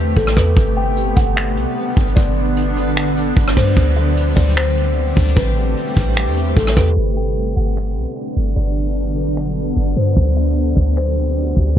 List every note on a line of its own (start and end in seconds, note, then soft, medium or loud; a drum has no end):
0.00 0.15 E2 loud
0.00 0.55 C3 medium
0.00 0.54 A3 medium
0.00 3.73 B3 medium
0.00 0.54 G4 loud
0.17 0.36 A1 loud
0.17 0.36 A4 medium
0.17 kick medium
0.27 cross-stick loud
0.36 0.56 E2 loud
0.36 0.56 B4 medium
0.36 kick medium
0.36 cross-stick medium
0.36 closed hi-hat medium
0.57 1.14 G1 loud
0.57 3.74 D3 medium
0.57 3.74 F#3 medium
0.57 6.93 G3 medium
0.57 3.74 D4 loud
0.57 3.74 B4 loud
0.57 kick loud
0.57 closed hi-hat medium
0.77 1.14 G5 medium
0.97 closed hi-hat medium
1.16 1.58 G1 loud
1.16 1.36 F#5 medium
1.16 kick medium
1.16 closed hi-hat medium
1.36 1.74 E5 medium
1.36 finger snap loud
1.36 closed hi-hat medium
1.57 1.66 B1 loud
1.57 closed hi-hat medium
1.97 2.16 G1 loud
1.97 kick medium
1.97 closed hi-hat soft
2.07 closed hi-hat medium
2.16 3.33 G1 loud
2.16 2.54 D5 loud
2.16 kick loud
2.16 closed hi-hat medium
2.57 closed hi-hat medium
2.77 closed hi-hat medium
2.97 finger snap loud
2.97 closed hi-hat medium
3.17 closed hi-hat medium
3.37 3.56 G1 loud
3.37 kick medium
3.48 cross-stick loud
3.57 3.76 G2 loud
3.57 3.76 C5 medium
3.57 kick medium
3.57 cross-stick medium
3.57 closed hi-hat soft
3.67 closed hi-hat medium
3.77 4.34 D2 loud
3.77 5.35 D3 medium
3.77 6.94 A3 medium
3.77 5.35 C4 medium
3.77 6.93 G4 medium
3.77 kick loud
3.77 closed hi-hat medium
3.96 4.34 E5 medium
4.17 closed hi-hat medium
4.36 5.14 D2 loud
4.36 4.55 D5 medium
4.36 kick medium
4.36 closed hi-hat medium
4.57 4.94 C5 medium
4.57 finger snap loud
4.57 closed hi-hat medium
4.77 closed hi-hat medium
5.17 5.36 D2 loud
5.17 kick medium
5.17 closed hi-hat soft
5.27 closed hi-hat medium
5.36 5.75 A1 loud
5.36 6.95 C3 medium
5.36 5.74 B4 loud
5.36 6.95 B4 medium
5.36 kick loud
5.36 closed hi-hat medium
5.77 closed hi-hat medium
5.97 6.28 A1 loud
5.97 kick medium
5.97 closed hi-hat medium
6.17 finger snap loud
6.17 closed hi-hat medium
6.27 6.55 E2 loud
6.37 closed hi-hat medium
6.57 6.76 A1 loud
6.57 6.76 A4 medium
6.57 kick loud
6.67 cross-stick loud
6.76 6.96 E2 loud
6.76 6.96 B4 medium
6.76 kick loud
6.76 cross-stick medium
6.76 closed hi-hat medium
6.97 7.54 G1 loud
6.97 11.73 D3 medium
6.97 10.14 F#3 medium
6.97 10.14 G3 medium
6.97 10.14 B3 medium
6.97 10.14 D4 medium
6.97 10.14 B4 medium
7.17 7.54 G5 medium
7.56 7.98 G1 loud
7.56 7.75 F#5 medium
7.77 8.14 E5 medium
7.77 finger snap loud
7.97 8.06 B1 loud
8.37 8.56 G1 loud
8.56 9.73 G1 loud
8.56 8.94 D5 loud
9.37 finger snap loud
9.77 9.96 G1 loud
9.97 10.16 G2 loud
9.97 10.16 C5 medium
10.17 10.74 D2 loud
10.17 11.79 A3 medium
10.17 11.75 C4 medium
10.17 11.79 G4 medium
10.17 kick loud
10.37 10.74 E5 medium
10.76 11.54 D2 loud
10.76 10.95 D5 medium
10.76 kick medium
10.97 11.35 C5 medium
10.97 finger snap loud
11.57 11.76 D2 loud
11.57 kick medium